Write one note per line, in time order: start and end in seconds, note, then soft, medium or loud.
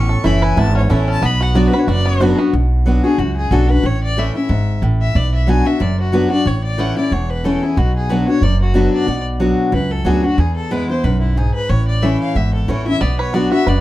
0.00 0.14 A1 loud
0.00 0.54 A2 medium
0.00 0.39 C#4 medium
0.00 0.27 C#6 loud
0.09 0.54 A4 medium
0.24 0.52 F#1 medium
0.24 0.55 E3 medium
0.24 0.55 A3 medium
0.24 0.56 C#4 loud
0.24 0.56 E4 medium
0.24 0.56 E4 loud
0.24 0.44 B5 loud
0.42 0.87 B4 medium
0.42 0.60 G#5 loud
0.57 0.85 G#1 medium
0.57 1.20 E2 loud
0.57 1.04 E4 medium
0.57 0.76 A5 loud
0.75 1.07 C#4 medium
0.75 0.93 C#5 medium
0.90 1.18 A1 loud
0.90 1.21 E3 medium
0.90 1.21 A3 medium
0.90 1.22 C#4 loud
0.90 1.22 E4 loud
0.90 1.23 A4 medium
0.90 1.08 E5 medium
1.08 1.22 C#4 medium
1.08 1.27 A5 loud
1.22 1.67 B1 loud
1.22 1.85 B2 medium
1.22 1.69 B3 medium
1.22 1.44 B5 loud
1.41 1.54 F#4 medium
1.41 1.58 F#5 loud
1.54 1.72 F#3 medium
1.54 1.72 B3 loud
1.54 1.72 D4 loud
1.54 1.87 F#4 medium
1.54 1.72 F#4 medium
1.54 1.69 D5 medium
1.67 1.80 B4 medium
1.73 1.88 D4 medium
1.73 1.87 F#4 medium
1.73 2.18 B4 medium
1.79 1.89 C#5 medium
1.87 2.32 F#1 medium
1.87 2.51 F#2 medium
1.87 2.19 F#4 medium
1.87 2.35 D5 loud
2.06 2.37 B3 medium
2.20 2.37 F#3 medium
2.20 2.38 B3 medium
2.20 2.38 D4 loud
2.20 2.53 F#4 medium
2.20 2.38 F#4 loud
2.38 2.53 B3 medium
2.38 2.54 D4 medium
2.38 2.53 F#4 medium
2.53 2.98 B1 medium
2.53 3.16 B2 medium
2.86 3.03 F#3 medium
2.86 3.03 B3 medium
2.86 3.04 D4 medium
2.86 3.03 F#4 medium
3.03 3.19 D4 medium
3.03 3.18 F#4 medium
3.03 3.20 G#4 medium
3.18 3.46 C#2 medium
3.18 3.81 F#2 medium
3.18 3.36 F#4 medium
3.37 3.53 G#4 medium
3.51 3.79 B1 medium
3.51 3.68 F#3 medium
3.51 3.68 B3 medium
3.51 3.69 D4 loud
3.51 3.67 F#4 loud
3.51 3.72 A4 medium
3.68 3.84 D4 medium
3.68 3.83 F#4 medium
3.68 3.87 B4 medium
3.83 4.28 A1 medium
3.83 4.46 A2 medium
3.83 4.03 C#5 medium
4.04 4.20 D5 loud
4.17 4.34 E3 medium
4.17 4.34 A3 loud
4.17 4.34 C#4 loud
4.17 4.34 E4 medium
4.17 4.36 E5 medium
4.35 4.50 C#4 soft
4.35 4.49 E4 medium
4.35 4.80 E5 medium
4.49 4.77 G#1 medium
4.49 4.81 G#2 medium
4.82 5.10 A1 medium
4.82 5.14 A2 medium
5.02 5.18 E5 medium
5.15 5.60 B1 loud
5.15 5.78 B2 medium
5.15 5.34 D5 medium
5.35 5.51 E5 medium
5.47 5.64 F#3 medium
5.47 5.65 B3 medium
5.47 5.65 D4 medium
5.47 5.64 F#4 medium
5.47 5.68 G#5 loud
5.65 5.80 D4 medium
5.65 5.80 F#4 medium
5.65 5.83 E5 medium
5.80 6.25 F#1 medium
5.80 6.43 F#2 medium
5.80 5.98 D5 medium
6.00 6.16 F#4 medium
6.12 6.30 F#3 medium
6.12 6.30 B3 loud
6.12 6.30 D4 loud
6.12 6.29 F#4 loud
6.12 6.30 B4 medium
6.30 6.46 D4 medium
6.30 6.45 F#4 medium
6.30 6.49 D5 loud
6.46 6.90 A1 medium
6.46 7.08 A2 medium
6.46 6.63 C#5 medium
6.64 6.81 D5 medium
6.78 6.95 E3 medium
6.78 6.95 A3 medium
6.78 6.96 C#4 loud
6.78 6.95 E4 loud
6.78 6.97 F#5 medium
6.97 7.12 C#4 soft
6.97 7.11 E4 medium
6.97 7.14 D5 medium
7.11 7.56 E1 medium
7.11 7.74 E2 medium
7.11 7.32 C#5 medium
7.30 7.46 B4 medium
7.44 7.61 E3 medium
7.44 7.62 A3 medium
7.44 7.62 C#4 medium
7.44 7.62 E4 loud
7.44 7.64 A4 medium
7.62 7.77 C#4 soft
7.62 7.77 E4 medium
7.62 7.79 G#4 medium
7.77 8.22 B1 loud
7.77 8.39 B2 medium
7.77 7.95 F#4 medium
7.96 8.11 G#4 medium
8.09 8.26 F#3 medium
8.09 8.27 B3 loud
8.09 8.27 D4 medium
8.09 8.26 F#4 medium
8.09 8.27 B4 medium
8.28 8.43 D4 medium
8.28 8.42 F#4 medium
8.28 8.45 C#5 medium
8.42 8.86 F#1 medium
8.42 9.05 F#2 medium
8.42 8.60 D5 medium
8.62 8.78 F#4 medium
8.74 9.06 F#3 medium
8.74 9.06 B3 medium
8.74 9.06 D4 loud
8.74 9.06 F#4 loud
8.74 8.92 B4 medium
8.93 9.23 D5 medium
9.07 9.52 B1 medium
9.07 9.70 B2 medium
9.40 9.71 F#3 medium
9.40 9.71 B3 medium
9.40 9.72 D4 medium
9.40 9.72 F#4 medium
9.72 10.00 C#2 medium
9.72 10.35 F#2 medium
9.72 9.93 B4 medium
9.91 10.08 A4 medium
10.05 10.33 D2 medium
10.05 10.22 F#3 medium
10.05 10.23 B3 medium
10.05 10.23 D4 medium
10.05 10.21 F#4 loud
10.05 10.26 G#4 medium
10.22 10.38 D4 soft
10.22 10.37 F#4 medium
10.22 10.41 F#4 loud
10.38 10.83 E2 loud
10.38 11.01 E2 medium
10.38 10.55 G#4 medium
10.56 10.73 A4 medium
10.71 10.88 E3 medium
10.71 10.88 G#3 loud
10.71 10.88 B3 medium
10.71 10.88 E4 medium
10.71 10.89 B4 medium
10.89 11.04 B3 medium
10.89 11.04 E4 medium
10.89 11.05 C5 medium
11.04 11.48 B1 medium
11.04 11.35 F#2 medium
11.04 11.20 B4 medium
11.21 11.39 E4 medium
11.37 11.68 G#2 medium
11.37 11.54 G#4 medium
11.54 11.71 B4 medium
11.69 12.14 A1 loud
11.69 12.32 A2 medium
11.69 11.87 C#5 medium
11.88 12.05 D5 medium
12.02 12.34 E3 medium
12.02 12.34 A3 medium
12.02 12.34 C#4 medium
12.02 12.34 E4 medium
12.02 12.20 E5 medium
12.20 12.38 F5 medium
12.35 12.63 G#1 medium
12.35 12.98 E2 medium
12.35 12.53 E5 medium
12.54 12.70 A4 medium
12.68 12.96 A1 medium
12.68 12.85 E3 medium
12.68 12.85 A3 medium
12.68 12.86 C#4 loud
12.68 12.85 E4 medium
12.68 12.86 C#5 medium
12.86 13.01 C#4 medium
12.86 13.00 E4 medium
12.86 13.02 E5 loud
13.01 13.46 B1 medium
13.01 13.63 B2 medium
13.01 13.33 B3 medium
13.01 13.18 D5 medium
13.19 13.66 B4 medium
13.19 13.36 C#5 medium
13.33 13.50 F#3 medium
13.33 13.80 B3 medium
13.33 13.51 B3 loud
13.33 13.51 D4 medium
13.33 13.51 F#4 loud
13.33 13.51 D5 medium
13.52 13.67 D4 soft
13.52 13.80 F#4 medium
13.52 13.66 F#4 medium
13.52 13.70 E5 loud
13.66 13.80 F#1 medium
13.66 13.80 F#2 medium
13.66 13.80 B4 medium
13.66 13.80 D5 medium